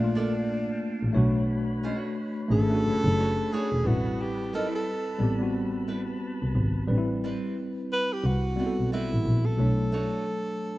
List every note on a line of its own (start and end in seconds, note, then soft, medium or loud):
0.00 0.64 A#1 medium
0.00 1.13 A3 medium
0.00 0.02 A#3 medium
0.00 1.14 A#3 medium
0.00 0.03 D4 medium
0.00 1.16 D4 medium
0.00 1.15 D4 medium
0.00 0.04 F4 medium
0.00 1.16 A4 medium
0.00 1.12 F5 medium
0.00 1.11 G5 soft
0.00 1.11 A5 medium
0.04 1.16 F4 medium
0.15 0.32 A#3 medium
0.15 0.32 F4 medium
0.15 0.32 A4 medium
0.15 0.32 D5 medium
1.03 1.12 A1 medium
1.13 1.84 B1 loud
1.13 2.34 A3 medium
1.13 2.36 D4 medium
1.13 3.82 B4 medium
1.13 3.81 C#5 medium
1.13 2.35 C#5 medium
1.13 6.83 B5 medium
1.17 2.37 F#4 medium
1.83 1.96 G#3 medium
1.83 1.97 C#4 medium
1.83 1.97 F4 medium
1.83 1.98 C5 medium
1.96 2.14 A3 medium
1.96 2.14 D4 medium
1.96 2.15 F#4 medium
1.96 2.15 C#5 medium
2.48 2.76 G#1 medium
2.48 2.67 A3 medium
2.48 2.67 C#4 medium
2.48 2.68 D4 medium
2.48 3.54 A4 loud
2.52 2.69 G#4 medium
2.69 3.83 A3 medium
2.69 3.84 C#4 medium
2.69 3.85 D4 medium
2.74 3.85 F#4 medium
2.84 2.99 F#1 soft
3.04 3.30 F#1 medium
3.19 3.31 A3 medium
3.19 3.32 D4 medium
3.19 3.32 F#4 medium
3.19 3.32 C#5 medium
3.52 3.69 A3 medium
3.52 3.69 D4 medium
3.52 3.69 F#4 medium
3.52 3.89 G#4 medium
3.52 3.70 C#5 medium
3.72 3.85 E1 medium
3.83 4.54 A1 medium
3.83 5.05 G3 medium
3.83 5.06 C4 medium
3.83 4.23 F#4 medium
3.83 6.84 B4 medium
3.83 5.05 B4 medium
3.83 6.84 A5 medium
3.88 5.07 E4 medium
4.21 4.53 G4 loud
4.53 4.66 F#3 medium
4.53 4.67 B3 medium
4.53 4.67 D#4 medium
4.53 4.72 A4 medium
4.53 4.67 A#4 medium
4.66 4.84 G3 medium
4.66 4.84 C4 medium
4.66 4.84 E4 medium
4.66 4.84 B4 medium
4.75 5.37 A4 medium
5.18 6.04 A1 medium
5.18 5.37 G3 medium
5.18 5.37 B3 medium
5.18 5.38 C4 medium
5.23 5.39 G4 medium
5.39 6.53 G3 medium
5.39 6.53 B3 medium
5.39 6.54 C4 medium
5.43 6.55 F#4 medium
5.88 6.01 G3 medium
5.88 6.01 C4 medium
5.88 6.01 E4 medium
5.88 6.01 B4 medium
6.42 6.52 C2 medium
6.55 6.81 G#1 medium
6.87 7.31 A1 medium
6.87 8.08 G3 medium
6.87 8.09 C4 medium
6.87 6.97 D4 medium
6.87 8.09 B4 medium
6.98 8.13 E4 medium
7.24 7.54 G3 medium
7.24 7.54 C4 medium
7.24 7.54 E4 medium
7.24 7.55 B4 medium
7.92 8.14 B4 loud
8.13 8.28 G4 medium
8.24 8.50 C2 medium
8.24 8.92 F#4 loud
8.56 9.47 G3 medium
8.56 8.71 G3 medium
8.56 9.47 B3 medium
8.56 9.48 C4 medium
8.56 8.71 C4 medium
8.56 8.71 E4 medium
8.60 8.66 F#4 medium
8.60 8.72 B4 medium
8.66 9.52 A4 medium
8.79 8.88 B1 medium
8.92 9.08 G3 medium
8.92 9.09 C4 medium
8.92 9.47 E4 medium
8.92 9.09 E4 medium
8.92 9.09 B4 medium
9.13 9.22 A1 medium
9.25 9.51 A#1 medium
9.46 10.78 A4 medium
9.57 10.01 B1 medium
9.57 10.78 F#3 medium
9.57 10.78 A3 medium
9.57 10.78 C#5 medium
9.61 10.78 D4 medium
9.92 10.23 A3 medium
9.92 10.24 D4 medium
9.92 10.24 F#4 medium
9.92 10.24 C#5 medium